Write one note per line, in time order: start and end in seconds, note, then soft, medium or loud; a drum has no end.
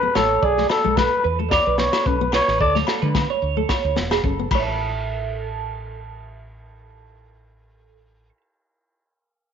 0.00 0.09 B3 medium
0.00 0.14 A4 medium
0.00 0.13 B4 medium
0.15 0.36 A1 medium
0.15 0.31 A3 medium
0.15 0.46 A4 medium
0.15 0.41 C#5 medium
0.15 snare medium
0.15 low agogo medium
0.42 0.64 B1 medium
0.42 0.69 G#4 medium
0.42 0.68 D5 medium
0.42 kick medium
0.58 0.73 A3 medium
0.58 snare soft
0.69 0.98 A4 medium
0.69 muted clean electric guitar stroke medium
0.69 snare medium
0.69 low agogo medium
0.84 1.06 B1 medium
0.84 0.91 G#3 medium
0.84 1.10 A4 medium
0.96 1.12 A3 medium
0.96 1.24 B4 medium
0.96 kick medium
0.96 snare medium
0.96 low agogo medium
1.24 1.57 E2 medium
1.24 1.38 B4 medium
1.39 1.54 A3 medium
1.39 1.51 A4 medium
1.51 1.65 C#5 medium
1.51 1.79 D5 medium
1.51 kick medium
1.51 snare medium
1.51 low agogo medium
1.67 1.88 B1 medium
1.67 1.92 B4 medium
1.78 1.94 B3 medium
1.78 2.08 C#5 medium
1.78 snare medium
1.93 2.19 A4 medium
1.93 snare medium
1.93 low agogo medium
2.06 2.39 B1 medium
2.06 2.15 C#4 medium
2.06 2.33 B4 medium
2.06 kick medium
2.21 2.28 B3 medium
2.32 2.59 B4 medium
2.32 2.59 C#5 medium
2.32 snare medium
2.32 low agogo medium
2.48 2.58 A1 medium
2.48 snare soft
2.60 2.82 D2 medium
2.60 2.74 A4 medium
2.60 2.77 D5 medium
2.60 kick medium
2.75 2.90 A3 medium
2.75 2.87 C#5 medium
2.75 snare soft
2.87 3.02 A4 medium
2.87 snare medium
2.87 low agogo medium
3.02 3.23 D3 medium
3.02 3.09 G#3 medium
3.02 3.28 B4 medium
3.15 3.30 A3 medium
3.15 kick medium
3.15 snare medium
3.15 low agogo medium
3.30 3.56 C#5 medium
3.42 3.63 D2 medium
3.57 3.72 A3 medium
3.57 3.69 A4 medium
3.69 3.95 C#5 medium
3.69 kick medium
3.69 snare medium
3.69 low agogo medium
3.84 3.96 D2 medium
3.96 4.21 E1 medium
3.96 4.11 B3 medium
3.96 snare medium
4.11 4.23 G#4 medium
4.11 snare medium
4.11 low agogo medium
4.24 4.48 F#1 medium
4.24 4.32 C#4 medium
4.24 4.50 A4 medium
4.24 kick medium
4.39 4.46 B3 medium
4.51 8.29 A1 medium
4.51 4.85 A3 medium
4.51 8.29 A4 medium
4.51 kick medium
4.51 crash medium
4.51 low agogo medium
4.55 4.62 C#5 medium
4.59 8.37 E5 medium
4.59 8.41 A5 medium